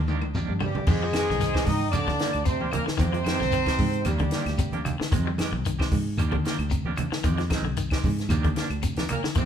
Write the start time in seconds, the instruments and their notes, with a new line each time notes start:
Already playing: fingered electric bass D#2, clean electric guitar D3
0.08 clean electric guitar D#3 A#3 D4 G4, high tom, shekere
0.21 fingered electric bass D2, high tom, claves
0.35 clean electric guitar D#3 A#3 D4 G4, mid tom, high conga, shekere
0.49 fingered electric bass G2, high conga
0.60 trombone section G2, clean electric guitar D3, trombone G3, horn section G3 G4, floor tom, low conga, claves, shekere
0.75 floor tom, low conga
0.86 fingered electric bass F2, trombone section G#2, clean electric guitar D#3 G#3 C4 G4, trombone G#3, horn section G#3 G#4, muted clean electric guitar stroke, kick, crash, low conga, shekere
1.03 clean electric guitar F3
1.13 clean electric guitar D#3 G#3 C4 G4, snare, closed hi-hat, high conga, claves, shekere
1.30 fingered electric bass C2, clean electric guitar D3, snare
1.40 clean electric guitar D#3, snare, closed hi-hat, shekere
1.54 clean electric guitar G#3 C4 G4, kick, snare, claves
1.65 fingered electric bass G#2, trombone section D#3, horn section D#4 D#5, trombone D#4, kick, snare, open hi-hat, high conga, low conga, shekere
1.91 fingered electric bass D#2, trombone section D3, clean electric guitar D#3 A#3 D4 G4, horn section D4 D5, trombone D4, closed hi-hat, high conga, low conga, claves, shekere
2.07 clean electric guitar D3, kick, snare, high conga
2.19 clean electric guitar D#3 A#3 D4 G4, snare, closed hi-hat, shekere
2.33 fingered electric bass D2, closed hi-hat, claves
2.45 trombone section C3, clean electric guitar C3, trombone C4, horn section C4 C5, kick, closed hi-hat, shekere
2.60 clean electric guitar A#3 D4 G4, high conga
2.71 fingered electric bass D#2, trombone section A#2, horn section A#3 A#4, trombone A#3, closed hi-hat, high conga, low conga, claves, shekere
2.86 clean electric guitar D3, muted fingered electric bass stroke, snare
2.97 fingered electric bass F2, trombone section C3, clean electric guitar D#3 G#3 C4 G4, horn section C4 C5, trombone C4, kick, closed hi-hat, shekere
3.13 clean electric guitar F3, closed hi-hat
3.25 clean electric guitar D#3 G#3 C4 G4, snare, closed hi-hat, high conga, claves, shekere
3.40 fingered electric bass C2, clean electric guitar D3, snare
3.51 clean electric guitar D#3, closed hi-hat, shekere
3.66 clean electric guitar G#3 C4 G4, kick, snare, closed hi-hat, claves
3.78 fingered electric bass G#2, kick, open hi-hat, high conga, low conga, shekere
3.93 closed hi-hat
4.04 fingered electric bass D#2, trombone section G2, clean electric guitar D#3 A#3 D4, horn section G3 G4, trombone G3, muted clean electric guitar stroke, closed hi-hat, high conga, claves, shekere
4.19 clean electric guitar D3, kick, closed hi-hat, high conga
4.31 clean electric guitar D#3 A#3 D4 G4, snare, closed hi-hat, shekere
4.46 fingered electric bass D2, snare, closed hi-hat, claves
4.58 clean electric guitar C3, kick, closed hi-hat, shekere
4.72 clean electric guitar A#3 D4 G4, closed hi-hat, high conga
4.85 fingered electric bass D#2, closed hi-hat, high conga, low conga, claves, shekere
5.00 clean electric guitar D3, muted fingered electric bass stroke, snare
5.12 fingered electric bass F2, clean electric guitar D#3 G#3 C4, muted clean electric guitar stroke, kick, closed hi-hat, low conga, shekere
5.27 clean electric guitar G3
5.38 clean electric guitar D#3 G#3 G4, snare, closed hi-hat, high conga, claves, shekere
5.52 fingered electric bass C2, muted clean electric guitar stroke
5.65 clean electric guitar D#3, closed hi-hat, shekere
5.79 clean electric guitar G#3 C4 G4, kick, snare, claves
5.92 fingered electric bass G#2, kick, open hi-hat, high conga, low conga, shekere
6.17 fingered electric bass D#2, clean electric guitar D#3 A#3 D4 G4, closed hi-hat, claves, shekere
6.32 clean electric guitar D3, kick, high conga
6.45 clean electric guitar D#3 A#3 D4 G4, snare, closed hi-hat, shekere
6.59 fingered electric bass D2, closed hi-hat, claves
6.70 clean electric guitar C3, kick, closed hi-hat, shekere
6.85 clean electric guitar A#3 D4 G4, high conga
6.96 fingered electric bass D#2, closed hi-hat, high conga, low conga, claves, shekere
7.11 clean electric guitar D3, muted fingered electric bass stroke, snare
7.24 fingered electric bass F2, clean electric guitar D#3 G#3 C4 G4, kick, closed hi-hat, shekere
7.38 clean electric guitar F3, snare, closed hi-hat
7.49 clean electric guitar D#3 G#3 C4, kick, snare, closed hi-hat, high conga, claves, shekere
7.62 fingered electric bass C2, clean electric guitar D3
7.77 clean electric guitar D#3, closed hi-hat, shekere
7.90 clean electric guitar G#3 C4 G4, kick, snare, closed hi-hat, claves
8.04 fingered electric bass G#2, kick, open hi-hat, high conga, low conga, shekere
8.18 snare, closed hi-hat
8.29 fingered electric bass D#2, clean electric guitar D#3 A#3 D4 G4, closed hi-hat, low conga, claves, shekere
8.44 clean electric guitar D3, kick, closed hi-hat, high conga
8.56 clean electric guitar A#3 D4 G4, snare, closed hi-hat, shekere
8.70 fingered electric bass D2, closed hi-hat, claves
8.82 clean electric guitar C3, kick, closed hi-hat, shekere
8.96 clean electric guitar A#3 D4 G4, snare, closed hi-hat, high conga
9.09 fingered electric bass D#2, trombone section A#2, horn section A#3 A#4, trombone A#3, closed hi-hat, low conga, claves, shekere
9.23 clean electric guitar D3, muted fingered electric bass stroke, snare
9.35 fingered electric bass F2, trombone section C3, clean electric guitar D#3 G#3 C4 G4, horn section C4 C5, trombone C4, kick, closed hi-hat, shekere